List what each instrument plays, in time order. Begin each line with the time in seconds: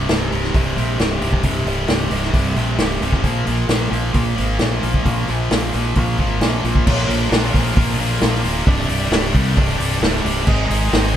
0.09 fingered electric bass C1, distorted electric guitar C2 G2 C3, snare, open hi-hat
0.30 fingered electric bass C1, distorted electric guitar C2 G2 C3, open hi-hat
0.44 snare
0.53 fingered electric bass C1, distorted electric guitar C2 G2 C3, kick, open hi-hat
0.76 fingered electric bass A#1, distorted electric guitar C2 G2 C3, open hi-hat
0.98 fingered electric bass C1, distorted electric guitar C2 G2 C3, snare, open hi-hat
1.21 fingered electric bass C1, distorted electric guitar C2 G2 C3, open hi-hat
1.33 kick
1.43 fingered electric bass C1, distorted electric guitar C2 G2 C3, kick, open hi-hat
1.66 fingered electric bass C1, distorted electric guitar C2 G2 C3, open hi-hat
1.88 fingered electric bass C1, distorted electric guitar C2 G2 C3, snare, open hi-hat
2.11 fingered electric bass C1, distorted electric guitar C2 G2 C3, open hi-hat
2.23 snare
2.33 fingered electric bass C1, distorted electric guitar C2 G2 C3, kick, open hi-hat
2.56 fingered electric bass A#1, distorted electric guitar C2 G2 C3, open hi-hat
2.78 fingered electric bass C1, distorted electric guitar C2 G2 C3, snare, open hi-hat
3.01 fingered electric bass C1, distorted electric guitar C2 G2 C3, open hi-hat
3.12 kick, snare
3.23 fingered electric bass A#1, distorted electric guitar A#2 F3 A#3, kick, open hi-hat
3.46 fingered electric bass A#1, distorted electric guitar A#2 F3 A#3, open hi-hat
3.69 fingered electric bass A#1, distorted electric guitar A#2 F3 A#3, snare, open hi-hat
3.90 fingered electric bass A#1, distorted electric guitar A#2 F3 A#3, open hi-hat
4.13 fingered electric bass A#1, distorted electric guitar A#2 F3 A#3, kick, open hi-hat
4.36 fingered electric bass G#1, distorted electric guitar A#2 F3 A#3, open hi-hat
4.59 fingered electric bass A#1, distorted electric guitar A#2 F3 A#3, snare, open hi-hat
4.81 fingered electric bass A#1, distorted electric guitar A#2 F3 A#3, open hi-hat
4.94 kick
5.05 fingered electric bass A#1, distorted electric guitar A#2 F3 A#3, kick, open hi-hat
5.28 fingered electric bass A#1, distorted electric guitar A#2 F3 A#3, open hi-hat
5.51 fingered electric bass A#1, distorted electric guitar A#2 F3 A#3, snare, open hi-hat
5.73 fingered electric bass A#1, distorted electric guitar A#2 F3 A#3, open hi-hat
5.95 fingered electric bass A#1, distorted electric guitar A#2 F3 A#3, kick, open hi-hat
6.18 fingered electric bass G#1, distorted electric guitar A#2 F3 A#3, kick, open hi-hat
6.40 fingered electric bass A#1, distorted electric guitar A#2 F3 A#3, snare, open hi-hat
6.64 fingered electric bass A#1, distorted electric guitar A#2 F3 A#3, open hi-hat
6.75 kick
6.86 fingered electric bass A#1, distorted electric guitar A#2 F3 A#3 D4 F4 A#4, kick, crash
7.08 fingered electric bass A#1, distorted electric guitar A#3 D4 F4 A#4, open hi-hat
7.30 fingered electric bass A#1, distorted electric guitar A#3 D4 F4 A#4, snare, open hi-hat
7.53 fingered electric bass A#1, distorted electric guitar A#2 F3 A#3 D4 F4 A#4, kick, open hi-hat
7.76 fingered electric bass A#1, distorted electric guitar A#3 D4 F4 A#4, kick, open hi-hat
7.99 fingered electric bass A#1, distorted electric guitar A#3 D4 F4 A#4, open hi-hat
8.20 fingered electric bass A#1, distorted electric guitar A#2 F3 A#3 D4 F4 A#4, snare, open hi-hat
8.34 snare
8.43 fingered electric bass D1, distorted electric guitar A#3 D4 F4 A#4, open hi-hat
8.65 fingered electric bass C1, distorted electric guitar C2 G2 C3 G3 D4, kick, open hi-hat
8.88 fingered electric bass C1, distorted electric guitar C3 G3 D4, open hi-hat
9.11 fingered electric bass C1, distorted electric guitar G2 C3 G3 D4, snare, open hi-hat
9.33 fingered electric bass C2, distorted electric guitar C2 G2 C3 G3 D4, kick, open hi-hat
9.55 fingered electric bass C1, distorted electric guitar G2 C3 G3 D4, kick, open hi-hat
9.78 fingered electric bass C1, distorted electric guitar C3 G3 D4, open hi-hat
10.00 fingered electric bass C1, distorted electric guitar C2 G2 C3 G3 D4, snare, open hi-hat
10.16 snare
10.24 fingered electric bass C1, distorted electric guitar C3 G3 D4, open hi-hat
10.47 fingered electric bass G#1, distorted electric guitar G#2 D#3 G#3 C4 D#4 G#4, kick, crash
10.69 fingered electric bass G#1, distorted electric guitar G#3 C4 D#4 G#4, open hi-hat
10.91 fingered electric bass G#1, distorted electric guitar G#3 C4 D#4 G#4, snare, open hi-hat